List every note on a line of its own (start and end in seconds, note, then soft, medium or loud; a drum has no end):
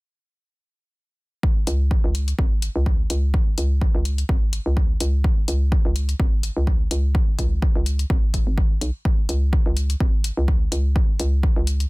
1.43 kick loud
1.67 1.98 C#2 loud
1.67 closed hi-hat medium
1.91 kick loud
2.04 2.33 C#2 loud
2.15 closed hi-hat medium
2.28 closed hi-hat soft
2.39 2.69 G#1 medium
2.39 kick loud
2.62 closed hi-hat medium
2.76 3.05 C#2 medium
2.86 kick loud
3.10 3.41 C#2 medium
3.10 closed hi-hat medium
3.34 kick loud
3.58 3.88 C#2 medium
3.58 closed hi-hat medium
3.81 kick loud
3.95 4.24 C#2 loud
4.05 closed hi-hat medium
4.18 closed hi-hat soft
4.29 4.60 G#1 medium
4.29 kick loud
4.53 closed hi-hat medium
4.66 4.95 C#2 medium
4.77 kick loud
5.00 5.31 C#2 medium
5.00 closed hi-hat medium
5.24 kick loud
5.48 5.79 C#2 loud
5.48 closed hi-hat medium
5.72 kick loud
5.85 6.14 C#2 loud
5.96 closed hi-hat medium
6.09 closed hi-hat soft
6.20 6.50 G#1 loud
6.20 kick loud
6.43 closed hi-hat medium
6.57 6.86 C#2 medium
6.67 kick loud
6.91 7.22 C#2 medium
6.91 closed hi-hat medium
7.15 kick loud
7.39 7.69 C#2 loud
7.39 kick medium
7.39 closed hi-hat medium
7.62 kick loud
7.75 8.05 C#2 loud
7.86 closed hi-hat medium
7.99 closed hi-hat soft
8.10 8.41 G#1 loud
8.10 kick loud
8.34 kick medium
8.34 closed hi-hat medium
8.47 8.76 G#1 medium
8.58 kick loud
8.81 8.91 B1 medium
8.81 closed hi-hat medium
9.05 kick loud
9.29 9.60 C#2 loud
9.29 closed hi-hat medium
9.53 kick loud
9.66 9.95 C#2 loud
9.77 closed hi-hat medium
9.90 closed hi-hat soft
10.00 10.31 G#1 medium
10.00 kick loud
10.24 closed hi-hat medium
10.37 10.67 C#2 medium
10.48 kick loud
10.72 11.02 C#2 medium
10.72 closed hi-hat medium
10.96 kick loud
11.20 11.50 C#2 loud
11.20 closed hi-hat medium
11.43 kick loud
11.56 11.86 C#2 loud
11.67 closed hi-hat medium
11.80 closed hi-hat soft